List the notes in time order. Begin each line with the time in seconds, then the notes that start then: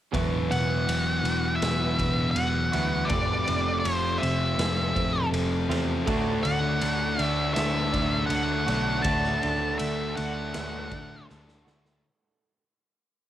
0.12 E1 E2 B2 E3 F#3 B3 E4 F#4, kick, ride
0.50 E1 B3 F#5, ride
0.87 E1 F#3, ride
1.23 E1 E2 B2 E3 B3, ride
1.56 E5
1.61 E1 F#3, snare, ride
1.99 E1 B3, kick, ride
2.31 F#5
2.36 E1 F#3, ride
2.72 D2 E2 B2 E3 F#3 B3 E4 F#4, ride
3.05 D5
3.09 F1 F2 C3 F3 A3 C4 F4, kick, ride
3.46 F1 C4, ride
3.80 C5
3.84 F1 A3, ride
4.18 C3 F3 C4 E5
4.23 F1 F2, ride
4.58 F1 A3, snare, ride
4.95 F1 C4, kick, ride
5.32 F1 A3, ride
5.69 E2 F2 C3 F3 A3 C4 F4, ride
6.05 D2 D3 F#3 A3 D4 F#4, kick, ride
6.43 D2 D4 F#5, ride
6.80 D2 A3, ride
7.18 D2 D3 A3 D4, ride
7.23 E5
7.54 D2 A3 E5, snare, ride
7.92 D2 D3 F#3 A3 D4, kick, ride
8.27 D2 A3 F#5, ride
8.31 D3 F#3 A3 D4
8.66 B1 A3 D4 F#4, ride
8.70 D3
9.02 D2 D3 F#3 A3 A5, kick, ride
9.06 A3 D4 F#4
9.24 snare
9.40 D4, ride
9.44 D2
9.78 D2 A3 E5, ride
10.15 D2 D3 A3 D4 F#5, ride
10.54 D2 A3, snare, ride
10.91 D2 D3 F#3 A3 D4, kick, ride
11.28 D2 D3 F#3 A3 D4, snare
11.48 snare
11.65 D2 A3 D4 F#4, snare
11.69 D3
11.85 snare